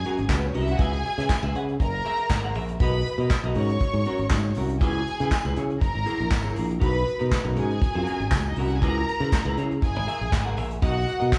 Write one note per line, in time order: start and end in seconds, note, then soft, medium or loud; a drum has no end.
0.00 0.23 G#4 medium
0.00 0.23 G#5 loud
0.04 0.24 C#4 loud
0.04 0.18 F#4 medium
0.04 0.17 A#4 medium
0.04 closed hi-hat medium
0.18 0.28 G#1 medium
0.18 muted clean electric guitar stroke soft
0.18 closed hi-hat soft
0.29 0.51 C#2 medium
0.29 0.38 A#3 medium
0.29 0.38 A#4 medium
0.29 muted clean electric guitar stroke soft
0.29 kick loud
0.29 snare loud
0.29 clap loud
0.29 tambourine medium
0.37 0.46 B3 medium
0.37 0.46 B4 medium
0.42 muted clean electric guitar stroke soft
0.42 closed hi-hat soft
0.47 0.55 C#4 medium
0.47 0.55 C#5 medium
0.54 0.76 C2 medium
0.54 0.74 C#4 medium
0.54 0.63 D#4 medium
0.54 0.68 F#4 medium
0.54 0.67 A#4 medium
0.54 0.63 D#5 medium
0.54 open hi-hat medium
0.62 0.71 E4 medium
0.62 0.71 E5 medium
0.67 0.79 F#4 loud
0.67 0.79 F#5 loud
0.67 muted clean electric guitar stroke soft
0.67 closed hi-hat soft
0.78 1.01 C#2 loud
0.78 1.53 G#4 loud
0.78 0.99 G#4 medium
0.78 0.93 B4 medium
0.78 0.92 E5 loud
0.78 1.53 G#5 loud
0.78 kick loud
0.78 closed hi-hat medium
0.93 muted clean electric guitar stroke soft
0.93 closed hi-hat soft
1.05 muted clean electric guitar stroke soft
1.05 closed hi-hat medium
1.18 1.28 C#3 medium
1.18 1.28 G#4 medium
1.18 1.29 B4 medium
1.18 1.29 E5 medium
1.18 snare soft
1.18 closed hi-hat medium
1.29 muted clean electric guitar stroke soft
1.29 kick loud
1.29 snare loud
1.29 clap medium
1.29 tambourine loud
1.43 1.53 C#2 loud
1.43 1.54 G#4 medium
1.43 1.54 B4 medium
1.43 1.56 E5 medium
1.55 1.76 C#3 loud
1.55 1.70 G#4 medium
1.55 1.69 B4 medium
1.55 1.68 F#5 medium
1.55 closed hi-hat medium
1.68 muted clean electric guitar stroke medium
1.68 closed hi-hat soft
1.80 2.01 F#1 medium
1.80 2.54 A#4 loud
1.80 2.54 A#5 loud
1.80 muted clean electric guitar stroke soft
1.80 kick loud
1.80 closed hi-hat medium
1.94 muted clean electric guitar stroke soft
1.94 closed hi-hat soft
2.05 2.24 G#4 medium
2.05 2.18 A#4 medium
2.05 2.18 E5 medium
2.05 closed hi-hat medium
2.19 muted clean electric guitar stroke soft
2.19 closed hi-hat soft
2.29 2.55 G#1 medium
2.29 muted clean electric guitar stroke soft
2.29 kick loud
2.29 snare loud
2.29 clap loud
2.29 tambourine medium
2.42 2.55 G#4 medium
2.42 2.55 A#4 medium
2.42 2.57 F#5 medium
2.42 closed hi-hat soft
2.55 2.76 A#1 medium
2.55 2.71 G#4 medium
2.55 2.70 A#4 medium
2.55 2.69 E5 medium
2.55 open hi-hat medium
2.68 muted clean electric guitar stroke soft
2.68 closed hi-hat soft
2.80 3.01 B1 loud
2.80 3.00 F#4 medium
2.80 2.95 A#4 medium
2.80 3.29 B4 medium
2.80 2.93 D#5 medium
2.80 3.29 B5 loud
2.80 kick loud
2.80 closed hi-hat medium
2.93 muted clean electric guitar stroke medium
2.93 closed hi-hat soft
3.06 muted clean electric guitar stroke soft
3.06 closed hi-hat medium
3.18 3.28 B2 medium
3.18 3.31 F#4 medium
3.18 3.32 A#4 medium
3.18 3.32 D#5 medium
3.18 closed hi-hat soft
3.30 muted clean electric guitar stroke soft
3.30 kick loud
3.30 snare loud
3.30 clap medium
3.30 tambourine loud
3.44 3.54 B1 loud
3.44 3.56 F#4 medium
3.44 3.57 A#4 medium
3.44 3.63 D#5 medium
3.54 3.77 G#2 loud
3.54 3.71 C#4 medium
3.54 3.71 F#4 medium
3.54 3.70 A#4 medium
3.54 4.53 C#5 loud
3.54 4.53 C#6 medium
3.54 open hi-hat medium
3.69 muted clean electric guitar stroke soft
3.69 closed hi-hat soft
3.81 muted clean electric guitar stroke soft
3.81 kick loud
3.81 closed hi-hat medium
3.94 4.04 G#2 medium
3.94 muted clean electric guitar stroke soft
3.94 closed hi-hat soft
4.05 4.25 C#4 medium
4.05 4.19 F#4 medium
4.05 4.18 A#4 medium
4.05 closed hi-hat medium
4.19 4.29 G#1 medium
4.19 muted clean electric guitar stroke soft
4.19 closed hi-hat soft
4.30 4.52 G#2 medium
4.30 muted clean electric guitar stroke soft
4.30 kick loud
4.30 snare loud
4.30 clap loud
4.30 tambourine medium
4.43 muted clean electric guitar stroke soft
4.43 closed hi-hat soft
4.55 4.81 C2 medium
4.55 4.76 C#4 medium
4.55 4.71 F#4 medium
4.55 4.70 A#4 medium
4.55 open hi-hat medium
4.69 muted clean electric guitar stroke soft
4.69 closed hi-hat soft
4.81 5.02 C#2 loud
4.81 5.01 E4 medium
4.81 5.54 G#4 loud
4.81 4.96 G#4 medium
4.81 4.95 B4 medium
4.81 5.54 G#5 loud
4.81 kick loud
4.81 closed hi-hat medium
4.95 muted clean electric guitar stroke soft
4.95 closed hi-hat soft
5.07 muted clean electric guitar stroke soft
5.07 closed hi-hat medium
5.20 5.30 C#3 medium
5.20 5.32 E4 medium
5.20 5.32 G#4 medium
5.20 5.32 B4 medium
5.20 snare soft
5.20 closed hi-hat medium
5.31 muted clean electric guitar stroke soft
5.31 kick loud
5.31 snare loud
5.31 clap medium
5.31 tambourine medium
5.45 5.55 C#2 loud
5.45 5.56 E4 medium
5.45 5.57 G#4 medium
5.45 5.57 B4 medium
5.45 closed hi-hat soft
5.56 5.78 C#3 medium
5.56 5.72 E4 medium
5.56 5.70 G#4 medium
5.56 5.70 C#5 medium
5.56 closed hi-hat medium
5.70 muted clean electric guitar stroke soft
5.70 closed hi-hat soft
5.80 5.93 F#1 medium
5.80 6.54 A#4 loud
5.80 6.54 A#5 loud
5.80 muted clean electric guitar stroke soft
5.80 kick loud
5.80 closed hi-hat medium
5.95 6.05 G#1 medium
5.95 muted clean electric guitar stroke soft
6.06 6.25 E4 medium
6.06 6.18 G#4 medium
6.06 6.17 A#4 medium
6.06 closed hi-hat medium
6.19 6.30 A#1 medium
6.19 muted clean electric guitar stroke soft
6.19 closed hi-hat soft
6.31 6.53 G#1 medium
6.31 muted clean electric guitar stroke soft
6.31 kick loud
6.31 snare loud
6.31 clap loud
6.31 tambourine medium
6.44 6.54 E4 medium
6.44 6.55 G#4 medium
6.44 6.56 C#5 medium
6.55 6.78 A#1 medium
6.55 6.71 E4 medium
6.55 6.68 G#4 medium
6.55 6.68 A#4 medium
6.55 open hi-hat medium
6.69 muted clean electric guitar stroke soft
6.69 closed hi-hat soft
6.80 7.03 B1 loud
6.80 7.00 D#4 medium
6.80 6.93 F#4 medium
6.80 6.92 A#4 medium
6.80 7.31 B4 loud
6.80 7.30 B5 medium
6.80 kick loud
6.80 closed hi-hat medium
6.93 muted clean electric guitar stroke soft
6.93 closed hi-hat soft
7.04 muted clean electric guitar stroke soft
7.04 closed hi-hat medium
7.19 7.30 B2 medium
7.19 7.29 D#4 soft
7.19 7.29 F#4 medium
7.19 7.30 A#4 medium
7.19 closed hi-hat medium
7.30 muted clean electric guitar stroke soft
7.30 kick loud
7.30 snare loud
7.30 clap medium
7.30 tambourine medium
7.44 7.58 B1 loud
7.44 7.55 D#4 medium
7.44 7.55 F#4 medium
7.44 7.55 A#4 medium
7.44 closed hi-hat soft
7.56 7.78 G#2 medium
7.56 7.72 C#4 medium
7.56 7.69 F#4 medium
7.56 8.43 G#4 medium
7.56 7.68 A#4 medium
7.56 8.43 G#5 loud
7.56 closed hi-hat medium
7.70 muted clean electric guitar stroke medium
7.70 closed hi-hat soft
7.81 muted clean electric guitar stroke soft
7.81 kick loud
7.81 closed hi-hat medium
7.95 8.05 F#2 medium
7.95 8.06 C#4 medium
7.95 8.07 F#4 medium
7.95 8.07 A#4 medium
8.07 8.23 C#4 medium
8.07 8.20 F#4 medium
8.07 8.20 A#4 medium
8.07 closed hi-hat medium
8.20 8.30 G#1 medium
8.20 muted clean electric guitar stroke medium
8.20 closed hi-hat soft
8.31 8.53 C#2 medium
8.31 muted clean electric guitar stroke soft
8.31 kick loud
8.31 snare loud
8.31 clap loud
8.31 tambourine medium
8.44 muted clean electric guitar stroke soft
8.44 closed hi-hat soft
8.49 8.57 D#4 medium
8.49 8.57 D#5 medium
8.56 8.82 C2 medium
8.56 8.77 C#4 medium
8.56 8.65 E4 medium
8.56 8.71 F#4 medium
8.56 8.70 A#4 medium
8.56 8.65 E5 medium
8.56 open hi-hat medium
8.66 8.74 F#4 medium
8.66 8.74 F#5 medium
8.70 muted clean electric guitar stroke soft
8.70 closed hi-hat soft
8.74 8.82 G#4 medium
8.74 8.82 G#5 loud
8.82 9.03 C#2 loud
8.82 9.02 E4 medium
8.82 8.96 G#4 medium
8.82 9.56 A#4 medium
8.82 8.95 B4 medium
8.82 9.56 A#5 loud
8.82 kick loud
8.82 closed hi-hat medium
8.96 muted clean electric guitar stroke medium
9.06 muted clean electric guitar stroke soft
9.06 closed hi-hat medium
9.20 9.30 C#3 medium
9.20 9.31 E4 medium
9.20 9.31 G#4 medium
9.20 9.32 B4 medium
9.20 closed hi-hat soft
9.32 muted clean electric guitar stroke soft
9.32 kick loud
9.32 snare loud
9.32 clap medium
9.32 tambourine medium
9.45 9.55 C#2 loud
9.45 9.57 E4 medium
9.45 9.58 G#4 medium
9.45 9.58 B4 medium
9.57 9.79 C#3 loud
9.57 9.73 E4 medium
9.57 9.71 G#4 medium
9.57 9.71 C#5 medium
9.57 closed hi-hat medium
9.71 muted clean electric guitar stroke medium
9.71 closed hi-hat soft
9.82 9.96 F#1 medium
9.82 10.56 G#4 loud
9.82 10.56 G#5 loud
9.82 muted clean electric guitar stroke soft
9.82 kick loud
9.82 closed hi-hat medium
9.95 10.06 G#1 medium
9.95 muted clean electric guitar stroke soft
10.07 10.26 G#4 medium
10.07 10.21 A#4 medium
10.07 10.20 E5 medium
10.07 closed hi-hat medium
10.21 10.31 A#1 medium
10.21 muted clean electric guitar stroke medium
10.21 closed hi-hat soft
10.32 10.57 G#1 medium
10.32 muted clean electric guitar stroke soft
10.32 kick loud
10.32 snare loud
10.32 clap loud
10.32 tambourine medium
10.45 10.55 G#4 medium
10.45 10.56 A#4 medium
10.45 10.57 F#5 medium
10.56 10.79 A#1 medium
10.56 10.72 G#4 medium
10.56 10.70 A#4 medium
10.56 10.69 E5 medium
10.56 open hi-hat medium
10.70 muted clean electric guitar stroke soft
10.70 closed hi-hat soft
10.82 11.04 B1 loud
10.82 11.01 F#4 medium
10.82 11.31 F#4 loud
10.82 10.95 A#4 medium
10.82 10.94 D#5 loud
10.82 11.31 F#5 loud
10.82 kick loud
10.82 closed hi-hat medium
10.95 muted clean electric guitar stroke soft
10.95 closed hi-hat soft
11.07 muted clean electric guitar stroke soft
11.07 closed hi-hat medium
11.20 11.31 B2 medium
11.20 11.30 F#4 medium
11.20 11.30 A#4 medium
11.20 11.31 D#5 medium
11.20 closed hi-hat soft
11.32 muted clean electric guitar stroke soft
11.32 kick loud
11.32 snare loud
11.32 clap medium
11.32 tambourine loud